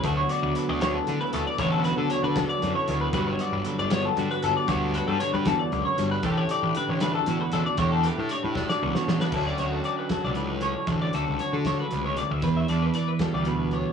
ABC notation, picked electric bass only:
X:1
M:6/8
L:1/16
Q:3/8=77
K:D
V:1 name="Picked electric bass" clef=bass
D,,2 z D,, z D,,3 D, z D,, z | A,,,3 D, z D,2 z F,, z D,,2 | G,,,2 z G,,, z G,,,3 G,, z G,,, z | D,,3 G,, z G,,2 z C,, z G,,,2 |
A,,,2 z A,,, z A,,,3 A,, z A,,, z | E,,3 A,, z A,,2 z C,, z A,,,2 | D,,2 D,,2 z3 C,,4- C,, | A,,,2 D,, C,, z D,3 C,,3 D,, |
E,,2 E,,2 z3 D,,4- D,, |]